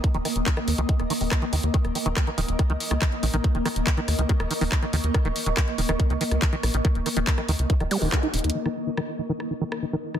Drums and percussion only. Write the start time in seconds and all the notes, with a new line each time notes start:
0.04 kick, closed hi-hat
0.14 closed hi-hat
0.25 cross-stick, open hi-hat
0.36 closed hi-hat
0.46 kick, clap, closed hi-hat
0.57 cross-stick, closed hi-hat
0.68 open hi-hat
0.78 closed hi-hat
0.89 kick, closed hi-hat
1.00 cross-stick, closed hi-hat
1.10 open hi-hat
1.21 open hi-hat
1.31 kick, cross-stick, clap, closed hi-hat
1.42 closed hi-hat
1.53 open hi-hat
1.63 closed hi-hat
1.74 kick, closed hi-hat
1.85 cross-stick, closed hi-hat
1.95 open hi-hat
2.06 closed hi-hat
2.17 kick, cross-stick, clap, closed hi-hat
2.27 closed hi-hat
2.38 open hi-hat
2.48 closed hi-hat
2.59 kick, cross-stick, closed hi-hat
2.70 closed hi-hat
2.80 open hi-hat
2.91 cross-stick, closed hi-hat
3.02 kick, clap, closed hi-hat
3.12 closed hi-hat
3.23 open hi-hat
3.34 cross-stick, closed hi-hat
3.44 kick, closed hi-hat
3.55 closed hi-hat
3.66 cross-stick, open hi-hat
3.76 closed hi-hat
3.87 kick, clap, closed hi-hat
3.97 closed hi-hat
4.08 cross-stick, open hi-hat
4.19 closed hi-hat
4.29 kick, closed hi-hat
4.40 cross-stick, closed hi-hat
4.51 open hi-hat
4.61 open hi-hat
4.72 kick, clap, closed hi-hat
4.83 cross-stick, closed hi-hat
4.93 open hi-hat
5.04 closed hi-hat
5.14 kick, cross-stick, closed hi-hat
5.25 closed hi-hat
5.36 open hi-hat
5.46 closed hi-hat
5.57 kick, cross-stick, clap, closed hi-hat
5.68 closed hi-hat
5.78 open hi-hat
5.89 cross-stick, closed hi-hat
6.00 kick, closed hi-hat
6.10 closed hi-hat
6.21 open hi-hat
6.31 cross-stick, closed hi-hat
6.42 kick, clap, closed hi-hat
6.53 closed hi-hat
6.63 cross-stick, open hi-hat
6.74 closed hi-hat
6.85 kick, closed hi-hat
6.95 closed hi-hat
7.06 cross-stick, open hi-hat
7.17 closed hi-hat
7.27 kick, clap, closed hi-hat
7.38 cross-stick, closed hi-hat
7.49 open hi-hat
7.59 closed hi-hat
7.70 kick, closed hi-hat
7.80 cross-stick, closed hi-hat
7.91 open hi-hat
8.02 open hi-hat
8.12 kick, cross-stick, clap, closed hi-hat
8.23 closed hi-hat
8.34 closed hi-hat, open hi-hat
8.39 closed hi-hat
8.44 closed hi-hat
8.50 closed hi-hat
8.66 cross-stick
8.97 cross-stick
9.40 cross-stick
9.72 cross-stick
10.14 cross-stick